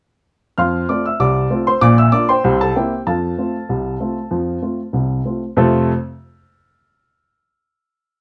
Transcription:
0.58 F2 F3 F5 C6 F6
0.89 A3 C4 F4 D5 D6
1.06 E5 E6
1.20 C2 C3 D5 D6
1.50 A3 C4 F4
1.67 C5 C6
1.81 A#1 A#2 D5 D6
1.98 E5 E6
2.12 A#3 D4 F4 D5 D6
2.29 C5 G5 C6
2.44 C2 C3
2.61 A4 A5
2.76 A#3 C4 E4 G4 G5
3.07 F2 F3 A4 F5 A5
3.38 A3 C4 F4
3.69 C2 C3
4.00 A3 C4 F4
4.31 F2 F3
4.62 A3 C4 F4
4.93 C2 C3
5.25 A3 C4 F4
5.57 F2 C3 A3 C4 F4 A4

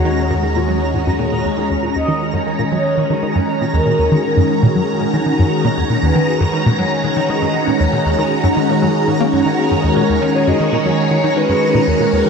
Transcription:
Already playing: D#2 G#3 C#4 F#4 A#5
0.05 D#3
0.31 F#2
0.43 D#3
0.56 A#2
0.69 F#3
0.94 G#2
1.07 F#2
1.19 A#2
1.32 A#2
1.45 D#2
1.58 D#3
1.70 D#2 D#3 A#5
1.83 A#2
1.92 D#2 G#3 D#5 A#5
2.08 D#3
2.34 F#2
2.47 D#3
2.59 A#2
2.64 F#4
2.72 F#3 C#5
2.97 D#3
3.10 D#3
3.23 D#3
3.35 F#2
3.61 A#2
3.74 D#2 A#4
3.86 A#2
3.99 D#2
4.12 D#3
4.25 A#4
4.37 F#2
4.50 D#3
4.63 A#2
4.75 F#3
5.01 D#3
5.14 D#3
5.26 D#3
5.39 F#2
5.65 A#2
5.77 D#2
5.90 A#2
6.02 D#2 B4
6.16 D#3
6.41 F#2
6.53 D#3
6.66 A#2
6.79 F#3 C#5
7.04 D#3
7.17 D#3
7.30 D#3 D#5
7.42 F#2
7.68 A#2
7.80 D#2 C#5
7.93 A#2
8.06 D#2
8.18 D#3
8.44 F#2
8.57 D#3
8.69 A#2
8.82 F#3
9.08 G#2
9.20 A#3
9.33 F#2
9.46 D#3
9.71 F#2
9.84 D#2 A#4
9.97 A#2
10.07 D#2 C#5
10.22 D#3
10.35 C#5
10.47 F#2 D#5
10.60 D#3
10.73 A#2
10.86 F#3 C#5
11.11 D#3
11.24 D#3
11.36 D#3 B4
11.49 F#2
11.75 A#2
11.88 D#2 A#4
12.00 A#2
12.13 D#2
12.26 D#3

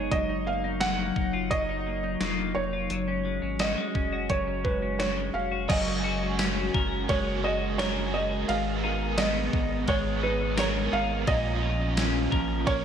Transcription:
Already playing: F#3 B3 D#4 G#4 C#5
0.11 F#1 F#3 D#5, kick, closed hi-hat
0.29 D#4
0.46 A#3 F5
0.64 D#4
0.80 F#5, snare, closed hi-hat
0.99 A#3
1.16 F#1 D#4, kick
1.33 F4
1.51 F#3 D#5, kick, closed hi-hat
1.69 D#4
1.87 A#3
2.04 D#4
2.21 F1 F4, snare, closed hi-hat
2.39 A#3
2.55 F1 D#4 C#5
2.73 F4
2.89 F#1 F#3 G#3 C#4 F#4, closed hi-hat
3.08 C#4
3.25 G#3
3.42 G#1 C#4
3.59 F#4 D#5, snare, closed hi-hat
3.78 G#3
3.95 F1 C#4, kick
4.13 F#4
4.30 F#1 F#3 C#5, kick, closed hi-hat
4.48 C#4
4.65 G#3 B4, kick
4.82 C#4
4.99 F#4 C#5, snare, closed hi-hat
5.17 G#3
5.34 F1 C#4 F5
5.52 F#4
5.68 F#1 F#3 G#3 A#3 C#4 F#4 G#4 D#5, kick, crash, ride
6.03 F#4 G#4
6.07 C#4
6.39 C#4, snare, ride, tambourine
6.74 F#1 A#4, kick
7.08 F#1 G#3 A#3 C#4 F#4 G#4 C#5, kick, ride
7.44 F#4 D#5
7.78 A#3 C#4 F#4 A#4 C#5, snare, ride, tambourine
7.82 G#4
8.14 F#4 D#5
8.48 G#1 G#2 D#3 G#3 B3 G#4 A#4 F5, ride
8.83 B3 D#4 G#4 A#4
8.87 G#3
9.18 B3 D#5, snare, ride, tambourine
9.53 G#1, kick
9.87 G#1 G#3 B3 G#4 C#5, kick, ride
10.23 D#4 B4
10.57 G#3 B3 G#4 A#4 C#5, snare, ride, tambourine
10.92 G#1 D#4 F5
11.26 A#1 A#2 F3 A#3 C#4 D#5, kick, ride
11.31 F4 A#4
11.62 F4
11.97 C#4, snare, ride, tambourine
12.32 A#1 A#4, kick
12.66 A#1 A#3 C#4 F4 A#4 C#5, kick, ride

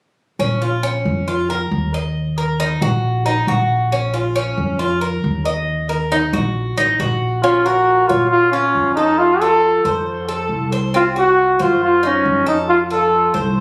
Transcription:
0.39 A#1 C#4
0.62 F4
0.83 C#4
1.05 F2
1.28 F4
1.50 A#4
1.71 D#2
1.94 D#5
2.38 A#4
2.60 D#4
2.81 A#1 F#4
3.26 D#4
3.47 A#1 F#4
3.92 C#4
4.14 F4
4.36 C#4
4.57 F2
4.79 F4
5.01 A#4
5.24 D#2
5.45 D#5
5.89 A#4
6.12 D#4
6.33 A#1 F#4
6.78 A1 D#4
6.99 A#1 F#4
7.43 C#4 F4
7.66 F#4 A#4
8.07 A#2 F4 C#5
8.30 F4
8.52 C#4 F4
8.75 F2
8.95 D#4 A4
9.18 F4
9.41 F4 A4
9.85 F2 C5
10.29 A4
10.49 C2
10.72 C5
10.94 C4 F4
11.16 F#4
11.59 F#2 F4 C5
11.84 F4
12.03 C#4 D#4
12.25 F2
12.46 D#4 A4
12.69 F4
12.90 F4 A4
13.34 C2 C5

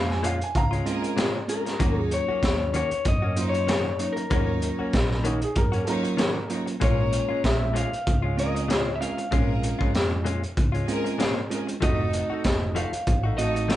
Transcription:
Already playing: F2 G#3 A#3 C#4 F4
0.09 G#5, muted clean electric guitar stroke, snare
0.23 A#2 G#3 C#4 F4 F5, closed hi-hat
0.41 G#5, muted clean electric guitar stroke, closed hi-hat
0.55 C#2 F5 A#5, kick, closed hi-hat
0.71 G#3 C#4 F4, closed hi-hat
0.85 G#3 A#3 C4 C#4 F4 G#4 A#4, muted clean electric guitar stroke, closed hi-hat
1.03 muted clean electric guitar stroke, closed hi-hat
1.16 A#2 G#3 C#4 F4, snare, closed hi-hat
1.48 G#3 C4 C#4 F4 G#4 A#4, muted clean electric guitar stroke, closed hi-hat
1.66 muted clean electric guitar stroke, snare, closed hi-hat
1.79 D#2 D#3 F#3 A#3 C#4 D#4 F4 F#4 C#5, kick, closed hi-hat
1.99 G#4
2.11 C#5, muted clean electric guitar stroke, closed hi-hat
2.29 A#3 C#4 F#4, muted fingered electric bass stroke
2.43 D#2, muted clean electric guitar stroke, kick, snare, closed hi-hat
2.60 muted clean electric guitar stroke
2.74 D#3 A#3 C#4 F#4 C#5, closed hi-hat
2.91 muted clean electric guitar stroke, muted fingered electric bass stroke, closed hi-hat
3.05 F#2 D#5, kick, closed hi-hat
3.22 A#3 C#4 F#4
3.36 F#3 A#3 C#4 D#4 F4 C5, muted clean electric guitar stroke, closed hi-hat
3.49 C#5
3.54 muted clean electric guitar stroke, closed hi-hat
3.67 D#3 A#3 C#4 F#4, snare, closed hi-hat
3.99 F#3 A#3 C#4 D#4 F#4 C#5, muted clean electric guitar stroke, closed hi-hat
4.13 A#4, muted clean electric guitar stroke
4.17 closed hi-hat
4.30 D#2 D#3 F#3 A#3 C#4 D#4 F4 F#4 A#4 C#5, kick, closed hi-hat
4.61 muted clean electric guitar stroke, closed hi-hat
4.79 A#3 C#4 F#4, muted fingered electric bass stroke
4.93 A#1, muted clean electric guitar stroke, kick, snare, closed hi-hat
5.10 muted clean electric guitar stroke, snare
5.24 D#3 A#3 C#4 D#4 F#4, closed hi-hat
5.41 G#4, muted clean electric guitar stroke, closed hi-hat
5.56 F#2 A#4, kick, closed hi-hat
5.72 A#3 C#4 F#4, closed hi-hat
5.84 F#3 A#3 C#4 D#4 F4 A4, muted clean electric guitar stroke, closed hi-hat
5.89 A#4 C#5
6.04 muted clean electric guitar stroke, closed hi-hat
6.17 D#3 A#3 C#4 F#4, snare, closed hi-hat
6.49 F#3 A#3 C#4 D#4 F4 F#4 C#5, muted clean electric guitar stroke, closed hi-hat
6.66 muted clean electric guitar stroke, closed hi-hat
6.80 A#1 A#2 G#3 A#3 C#4 F4 G#4 A#4 C#5, kick, closed hi-hat
7.12 muted clean electric guitar stroke, closed hi-hat
7.29 G#3 C#4 F4, muted fingered electric bass stroke
7.43 A#1 E5, muted clean electric guitar stroke, kick, snare, closed hi-hat
7.60 muted clean electric guitar stroke
7.74 A#2 G#3 C#4 F4 F5, closed hi-hat
7.91 muted clean electric guitar stroke, muted fingered electric bass stroke, closed hi-hat
8.07 C#2, kick, closed hi-hat
8.22 G#3 C#4 F4
8.37 G#3 A#3 C4 C#4 F4 G#4 A#4 D#5, muted clean electric guitar stroke, closed hi-hat
8.55 muted clean electric guitar stroke, closed hi-hat
8.68 A#2 G#3 C#4 F4, snare, closed hi-hat
8.84 C#5
8.96 E5
9.00 G#3 C4 C#4 F4 G#4 A#4 F5, muted clean electric guitar stroke, closed hi-hat
9.18 muted clean electric guitar stroke, closed hi-hat
9.31 A#1 A#2 G#3 C4 C#4 F4 G#4 A#4, kick, closed hi-hat
9.62 muted clean electric guitar stroke, closed hi-hat
9.79 G#3 C#4 F4, muted fingered electric bass stroke, kick
9.93 F2, muted clean electric guitar stroke, snare, closed hi-hat
10.11 muted clean electric guitar stroke
10.25 A#2 G#3 C#4 F4, closed hi-hat
10.43 muted clean electric guitar stroke, closed hi-hat
10.57 C#2, kick, closed hi-hat
10.72 G#3 C#4 F4, closed hi-hat
10.87 G#3 A#3 C4 C#4 F4 G#4 A#4, muted clean electric guitar stroke, closed hi-hat
11.04 muted clean electric guitar stroke, closed hi-hat
11.18 A#2 G#3 C#4 F4, snare, closed hi-hat
11.50 G#3 C4 C#4 F4 G#4 A#4, muted clean electric guitar stroke, closed hi-hat
11.67 muted clean electric guitar stroke, closed hi-hat
11.81 F1 F3 A3 C4 D#4 F#4 A4 D#5, kick, closed hi-hat
12.13 muted clean electric guitar stroke, closed hi-hat
12.30 A3 D#4 F#4, muted fingered electric bass stroke
12.44 F1, muted clean electric guitar stroke, kick, snare, closed hi-hat
12.62 muted clean electric guitar stroke
12.75 F3 A3 D#4 F#4 F5, closed hi-hat
12.93 muted clean electric guitar stroke, muted fingered electric bass stroke, closed hi-hat
13.07 A1, kick, closed hi-hat
13.24 A3 D#4 F#4
13.38 A3 C4 D#4 F#4 A4 D#5, muted clean electric guitar stroke, closed hi-hat
13.55 muted clean electric guitar stroke, closed hi-hat
13.68 F3 A3 D#4 F#4, snare, closed hi-hat

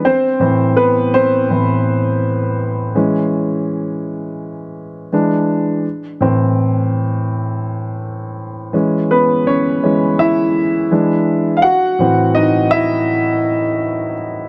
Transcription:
0.05 C4 C5
0.40 A2 E3 C4
0.76 B3 B4
1.14 C4 C5
1.50 A2 E3 C4
2.95 E3 G#3 C#4
5.12 E3 G#3 D4
6.21 A2 E3 C4
8.73 E3 G#3 C#4
9.11 B3 B4
9.47 C#4 C#5
9.83 E3 G#3 C#4
10.19 E4 E5
10.91 E3 G#3 D4
11.57 F5
11.62 F#4 F#5
11.99 A2 E3 C4
12.35 D#4 D#5
12.71 E4 E5

